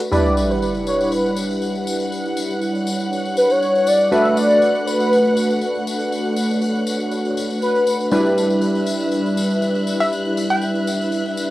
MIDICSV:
0, 0, Header, 1, 8, 480
1, 0, Start_track
1, 0, Tempo, 500000
1, 114, Time_signature, 4, 2, 24, 8
1, 11044, End_track
2, 0, Start_track
2, 0, Title_t, "Violin section"
2, 0, Program_c, 0, 48
2, 117, Note_on_c, 0, 78, 75
2, 117, Note_on_c, 0, 90, 73
2, 7784, Note_off_c, 0, 90, 0
2, 7794, Note_on_c, 0, 76, 78
2, 7796, Note_on_c, 0, 90, 79
2, 7806, Note_off_c, 0, 78, 0
2, 11044, Note_off_c, 0, 76, 0
2, 11044, Note_off_c, 0, 90, 0
2, 11044, End_track
3, 0, Start_track
3, 0, Title_t, "Synth pluck"
3, 0, Program_c, 1, 84
3, 9603, Note_on_c, 1, 76, 90
3, 9812, Note_off_c, 1, 76, 0
3, 10081, Note_on_c, 1, 79, 86
3, 10291, Note_off_c, 1, 79, 0
3, 11044, End_track
4, 0, Start_track
4, 0, Title_t, "Soft synth lead"
4, 0, Program_c, 2, 80
4, 113, Note_on_c, 2, 74, 114
4, 481, Note_on_c, 2, 71, 83
4, 496, Note_off_c, 2, 74, 0
4, 587, Note_off_c, 2, 71, 0
4, 593, Note_on_c, 2, 71, 88
4, 701, Note_off_c, 2, 71, 0
4, 834, Note_on_c, 2, 73, 88
4, 1074, Note_on_c, 2, 71, 85
4, 1088, Note_off_c, 2, 73, 0
4, 1794, Note_off_c, 2, 71, 0
4, 3237, Note_on_c, 2, 71, 83
4, 3366, Note_on_c, 2, 73, 95
4, 3380, Note_off_c, 2, 71, 0
4, 3716, Note_on_c, 2, 74, 97
4, 3731, Note_off_c, 2, 73, 0
4, 3951, Note_off_c, 2, 74, 0
4, 3956, Note_on_c, 2, 76, 110
4, 4196, Note_on_c, 2, 74, 101
4, 4210, Note_off_c, 2, 76, 0
4, 4669, Note_off_c, 2, 74, 0
4, 4674, Note_on_c, 2, 71, 86
4, 5596, Note_off_c, 2, 71, 0
4, 7314, Note_on_c, 2, 71, 110
4, 7761, Note_off_c, 2, 71, 0
4, 11044, End_track
5, 0, Start_track
5, 0, Title_t, "String machine"
5, 0, Program_c, 3, 50
5, 111, Note_on_c, 3, 62, 67
5, 111, Note_on_c, 3, 64, 72
5, 112, Note_on_c, 3, 55, 78
5, 112, Note_on_c, 3, 71, 85
5, 2014, Note_off_c, 3, 71, 0
5, 2033, Note_on_c, 3, 73, 85
5, 3915, Note_off_c, 3, 55, 0
5, 3915, Note_off_c, 3, 64, 0
5, 3935, Note_off_c, 3, 73, 0
5, 3953, Note_on_c, 3, 57, 80
5, 3954, Note_on_c, 3, 66, 70
5, 3954, Note_on_c, 3, 71, 86
5, 5855, Note_off_c, 3, 71, 0
5, 5873, Note_on_c, 3, 73, 84
5, 7755, Note_off_c, 3, 57, 0
5, 7756, Note_off_c, 3, 66, 0
5, 7774, Note_off_c, 3, 73, 0
5, 7793, Note_on_c, 3, 55, 79
5, 7793, Note_on_c, 3, 71, 86
5, 7794, Note_on_c, 3, 64, 71
5, 11044, Note_off_c, 3, 55, 0
5, 11044, Note_off_c, 3, 62, 0
5, 11044, Note_off_c, 3, 64, 0
5, 11044, Note_off_c, 3, 71, 0
5, 11044, End_track
6, 0, Start_track
6, 0, Title_t, "Synth keys"
6, 0, Program_c, 4, 88
6, 109, Note_on_c, 4, 55, 65
6, 112, Note_on_c, 4, 62, 60
6, 114, Note_on_c, 4, 64, 60
6, 117, Note_on_c, 4, 71, 76
6, 3925, Note_off_c, 4, 55, 0
6, 3926, Note_off_c, 4, 62, 0
6, 3928, Note_off_c, 4, 64, 0
6, 3929, Note_off_c, 4, 71, 0
6, 3950, Note_on_c, 4, 57, 70
6, 3952, Note_on_c, 4, 62, 62
6, 3955, Note_on_c, 4, 66, 62
6, 3957, Note_on_c, 4, 71, 76
6, 7766, Note_off_c, 4, 57, 0
6, 7767, Note_off_c, 4, 62, 0
6, 7768, Note_off_c, 4, 66, 0
6, 7769, Note_off_c, 4, 71, 0
6, 7790, Note_on_c, 4, 55, 69
6, 7793, Note_on_c, 4, 62, 61
6, 7795, Note_on_c, 4, 64, 62
6, 7798, Note_on_c, 4, 71, 76
6, 11044, Note_off_c, 4, 55, 0
6, 11044, Note_off_c, 4, 62, 0
6, 11044, Note_off_c, 4, 64, 0
6, 11044, Note_off_c, 4, 71, 0
6, 11044, End_track
7, 0, Start_track
7, 0, Title_t, "Sub drop"
7, 0, Program_c, 5, 103
7, 114, Note_on_c, 5, 60, 62
7, 2034, Note_off_c, 5, 60, 0
7, 11044, End_track
8, 0, Start_track
8, 0, Title_t, "Drums"
8, 0, Note_on_c, 9, 42, 42
8, 3, Note_off_c, 9, 42, 0
8, 3, Note_on_c, 9, 42, 37
8, 6, Note_on_c, 9, 54, 37
8, 99, Note_off_c, 9, 42, 0
8, 102, Note_off_c, 9, 54, 0
8, 119, Note_on_c, 9, 54, 49
8, 215, Note_off_c, 9, 54, 0
8, 248, Note_on_c, 9, 54, 23
8, 344, Note_off_c, 9, 54, 0
8, 355, Note_on_c, 9, 54, 76
8, 451, Note_off_c, 9, 54, 0
8, 488, Note_on_c, 9, 54, 30
8, 584, Note_off_c, 9, 54, 0
8, 597, Note_on_c, 9, 54, 42
8, 693, Note_off_c, 9, 54, 0
8, 715, Note_on_c, 9, 54, 23
8, 811, Note_off_c, 9, 54, 0
8, 832, Note_on_c, 9, 54, 71
8, 928, Note_off_c, 9, 54, 0
8, 966, Note_on_c, 9, 54, 37
8, 1062, Note_off_c, 9, 54, 0
8, 1073, Note_on_c, 9, 54, 49
8, 1169, Note_off_c, 9, 54, 0
8, 1211, Note_on_c, 9, 54, 23
8, 1307, Note_off_c, 9, 54, 0
8, 1310, Note_on_c, 9, 54, 83
8, 1406, Note_off_c, 9, 54, 0
8, 1448, Note_on_c, 9, 54, 34
8, 1544, Note_off_c, 9, 54, 0
8, 1553, Note_on_c, 9, 54, 44
8, 1555, Note_on_c, 9, 42, 69
8, 1649, Note_off_c, 9, 54, 0
8, 1651, Note_off_c, 9, 42, 0
8, 1683, Note_on_c, 9, 54, 22
8, 1779, Note_off_c, 9, 54, 0
8, 1795, Note_on_c, 9, 54, 88
8, 1891, Note_off_c, 9, 54, 0
8, 1919, Note_on_c, 9, 54, 37
8, 2015, Note_off_c, 9, 54, 0
8, 2035, Note_on_c, 9, 42, 70
8, 2035, Note_on_c, 9, 54, 44
8, 2131, Note_off_c, 9, 42, 0
8, 2131, Note_off_c, 9, 54, 0
8, 2164, Note_on_c, 9, 54, 21
8, 2260, Note_off_c, 9, 54, 0
8, 2273, Note_on_c, 9, 54, 83
8, 2369, Note_off_c, 9, 54, 0
8, 2406, Note_on_c, 9, 54, 33
8, 2502, Note_off_c, 9, 54, 0
8, 2510, Note_on_c, 9, 54, 48
8, 2515, Note_on_c, 9, 42, 69
8, 2606, Note_off_c, 9, 54, 0
8, 2611, Note_off_c, 9, 42, 0
8, 2639, Note_on_c, 9, 54, 25
8, 2735, Note_off_c, 9, 54, 0
8, 2753, Note_on_c, 9, 54, 88
8, 2849, Note_off_c, 9, 54, 0
8, 2883, Note_on_c, 9, 54, 36
8, 2884, Note_on_c, 9, 42, 47
8, 2979, Note_off_c, 9, 54, 0
8, 2980, Note_off_c, 9, 42, 0
8, 2996, Note_on_c, 9, 42, 72
8, 3002, Note_on_c, 9, 54, 46
8, 3092, Note_off_c, 9, 42, 0
8, 3098, Note_off_c, 9, 54, 0
8, 3122, Note_on_c, 9, 54, 26
8, 3125, Note_on_c, 9, 42, 47
8, 3218, Note_off_c, 9, 54, 0
8, 3221, Note_off_c, 9, 42, 0
8, 3234, Note_on_c, 9, 54, 77
8, 3330, Note_off_c, 9, 54, 0
8, 3359, Note_on_c, 9, 54, 34
8, 3365, Note_on_c, 9, 42, 33
8, 3455, Note_off_c, 9, 54, 0
8, 3461, Note_off_c, 9, 42, 0
8, 3476, Note_on_c, 9, 42, 68
8, 3480, Note_on_c, 9, 54, 40
8, 3572, Note_off_c, 9, 42, 0
8, 3576, Note_off_c, 9, 54, 0
8, 3604, Note_on_c, 9, 54, 26
8, 3700, Note_off_c, 9, 54, 0
8, 3713, Note_on_c, 9, 54, 85
8, 3809, Note_off_c, 9, 54, 0
8, 3844, Note_on_c, 9, 42, 32
8, 3850, Note_on_c, 9, 54, 32
8, 3940, Note_off_c, 9, 42, 0
8, 3946, Note_off_c, 9, 54, 0
8, 3957, Note_on_c, 9, 54, 46
8, 4053, Note_off_c, 9, 54, 0
8, 4082, Note_on_c, 9, 54, 25
8, 4178, Note_off_c, 9, 54, 0
8, 4195, Note_on_c, 9, 54, 92
8, 4291, Note_off_c, 9, 54, 0
8, 4324, Note_on_c, 9, 54, 32
8, 4420, Note_off_c, 9, 54, 0
8, 4433, Note_on_c, 9, 54, 45
8, 4529, Note_off_c, 9, 54, 0
8, 4560, Note_on_c, 9, 54, 23
8, 4656, Note_off_c, 9, 54, 0
8, 4679, Note_on_c, 9, 54, 85
8, 4775, Note_off_c, 9, 54, 0
8, 4802, Note_on_c, 9, 54, 39
8, 4898, Note_off_c, 9, 54, 0
8, 4923, Note_on_c, 9, 54, 46
8, 5019, Note_off_c, 9, 54, 0
8, 5041, Note_on_c, 9, 54, 22
8, 5043, Note_on_c, 9, 42, 46
8, 5137, Note_off_c, 9, 54, 0
8, 5139, Note_off_c, 9, 42, 0
8, 5152, Note_on_c, 9, 54, 85
8, 5248, Note_off_c, 9, 54, 0
8, 5284, Note_on_c, 9, 54, 33
8, 5380, Note_off_c, 9, 54, 0
8, 5389, Note_on_c, 9, 54, 44
8, 5394, Note_on_c, 9, 42, 66
8, 5485, Note_off_c, 9, 54, 0
8, 5490, Note_off_c, 9, 42, 0
8, 5518, Note_on_c, 9, 54, 22
8, 5614, Note_off_c, 9, 54, 0
8, 5636, Note_on_c, 9, 54, 79
8, 5732, Note_off_c, 9, 54, 0
8, 5754, Note_on_c, 9, 54, 34
8, 5850, Note_off_c, 9, 54, 0
8, 5874, Note_on_c, 9, 42, 68
8, 5878, Note_on_c, 9, 54, 48
8, 5970, Note_off_c, 9, 42, 0
8, 5974, Note_off_c, 9, 54, 0
8, 6001, Note_on_c, 9, 54, 21
8, 6097, Note_off_c, 9, 54, 0
8, 6110, Note_on_c, 9, 54, 80
8, 6206, Note_off_c, 9, 54, 0
8, 6249, Note_on_c, 9, 54, 38
8, 6345, Note_off_c, 9, 54, 0
8, 6352, Note_on_c, 9, 54, 51
8, 6354, Note_on_c, 9, 42, 65
8, 6448, Note_off_c, 9, 54, 0
8, 6450, Note_off_c, 9, 42, 0
8, 6485, Note_on_c, 9, 54, 22
8, 6581, Note_off_c, 9, 54, 0
8, 6593, Note_on_c, 9, 54, 80
8, 6689, Note_off_c, 9, 54, 0
8, 6721, Note_on_c, 9, 54, 38
8, 6724, Note_on_c, 9, 42, 45
8, 6817, Note_off_c, 9, 54, 0
8, 6820, Note_off_c, 9, 42, 0
8, 6830, Note_on_c, 9, 54, 49
8, 6835, Note_on_c, 9, 42, 69
8, 6926, Note_off_c, 9, 54, 0
8, 6931, Note_off_c, 9, 42, 0
8, 6961, Note_on_c, 9, 54, 27
8, 6963, Note_on_c, 9, 42, 45
8, 7057, Note_off_c, 9, 54, 0
8, 7059, Note_off_c, 9, 42, 0
8, 7077, Note_on_c, 9, 54, 75
8, 7173, Note_off_c, 9, 54, 0
8, 7203, Note_on_c, 9, 42, 30
8, 7203, Note_on_c, 9, 54, 34
8, 7299, Note_off_c, 9, 42, 0
8, 7299, Note_off_c, 9, 54, 0
8, 7314, Note_on_c, 9, 42, 66
8, 7316, Note_on_c, 9, 54, 47
8, 7410, Note_off_c, 9, 42, 0
8, 7412, Note_off_c, 9, 54, 0
8, 7443, Note_on_c, 9, 54, 24
8, 7539, Note_off_c, 9, 54, 0
8, 7553, Note_on_c, 9, 54, 87
8, 7649, Note_off_c, 9, 54, 0
8, 7683, Note_on_c, 9, 42, 30
8, 7685, Note_on_c, 9, 54, 38
8, 7779, Note_off_c, 9, 42, 0
8, 7781, Note_off_c, 9, 54, 0
8, 7789, Note_on_c, 9, 54, 45
8, 7885, Note_off_c, 9, 54, 0
8, 7927, Note_on_c, 9, 54, 23
8, 8023, Note_off_c, 9, 54, 0
8, 8041, Note_on_c, 9, 54, 78
8, 8137, Note_off_c, 9, 54, 0
8, 8162, Note_on_c, 9, 54, 34
8, 8258, Note_off_c, 9, 54, 0
8, 8270, Note_on_c, 9, 54, 46
8, 8275, Note_on_c, 9, 42, 66
8, 8366, Note_off_c, 9, 54, 0
8, 8371, Note_off_c, 9, 42, 0
8, 8401, Note_on_c, 9, 54, 25
8, 8497, Note_off_c, 9, 54, 0
8, 8511, Note_on_c, 9, 54, 76
8, 8607, Note_off_c, 9, 54, 0
8, 8642, Note_on_c, 9, 54, 37
8, 8643, Note_on_c, 9, 42, 46
8, 8738, Note_off_c, 9, 54, 0
8, 8739, Note_off_c, 9, 42, 0
8, 8751, Note_on_c, 9, 54, 49
8, 8755, Note_on_c, 9, 42, 68
8, 8847, Note_off_c, 9, 54, 0
8, 8851, Note_off_c, 9, 42, 0
8, 8884, Note_on_c, 9, 42, 46
8, 8888, Note_on_c, 9, 54, 25
8, 8980, Note_off_c, 9, 42, 0
8, 8984, Note_off_c, 9, 54, 0
8, 8996, Note_on_c, 9, 54, 82
8, 9092, Note_off_c, 9, 54, 0
8, 9124, Note_on_c, 9, 42, 31
8, 9126, Note_on_c, 9, 54, 33
8, 9220, Note_off_c, 9, 42, 0
8, 9222, Note_off_c, 9, 54, 0
8, 9235, Note_on_c, 9, 42, 65
8, 9235, Note_on_c, 9, 54, 49
8, 9331, Note_off_c, 9, 42, 0
8, 9331, Note_off_c, 9, 54, 0
8, 9362, Note_on_c, 9, 54, 25
8, 9458, Note_off_c, 9, 54, 0
8, 9475, Note_on_c, 9, 54, 83
8, 9571, Note_off_c, 9, 54, 0
8, 9602, Note_on_c, 9, 54, 37
8, 9698, Note_off_c, 9, 54, 0
8, 9714, Note_on_c, 9, 42, 69
8, 9721, Note_on_c, 9, 54, 45
8, 9810, Note_off_c, 9, 42, 0
8, 9817, Note_off_c, 9, 54, 0
8, 9839, Note_on_c, 9, 54, 23
8, 9935, Note_off_c, 9, 54, 0
8, 9957, Note_on_c, 9, 54, 73
8, 10053, Note_off_c, 9, 54, 0
8, 10081, Note_on_c, 9, 54, 31
8, 10177, Note_off_c, 9, 54, 0
8, 10191, Note_on_c, 9, 54, 47
8, 10193, Note_on_c, 9, 42, 68
8, 10287, Note_off_c, 9, 54, 0
8, 10289, Note_off_c, 9, 42, 0
8, 10323, Note_on_c, 9, 54, 21
8, 10419, Note_off_c, 9, 54, 0
8, 10438, Note_on_c, 9, 54, 72
8, 10534, Note_off_c, 9, 54, 0
8, 10562, Note_on_c, 9, 42, 49
8, 10571, Note_on_c, 9, 54, 37
8, 10658, Note_off_c, 9, 42, 0
8, 10667, Note_off_c, 9, 54, 0
8, 10673, Note_on_c, 9, 42, 72
8, 10674, Note_on_c, 9, 54, 49
8, 10769, Note_off_c, 9, 42, 0
8, 10770, Note_off_c, 9, 54, 0
8, 10802, Note_on_c, 9, 42, 49
8, 10804, Note_on_c, 9, 54, 20
8, 10898, Note_off_c, 9, 42, 0
8, 10900, Note_off_c, 9, 54, 0
8, 10918, Note_on_c, 9, 54, 75
8, 11014, Note_off_c, 9, 54, 0
8, 11044, End_track
0, 0, End_of_file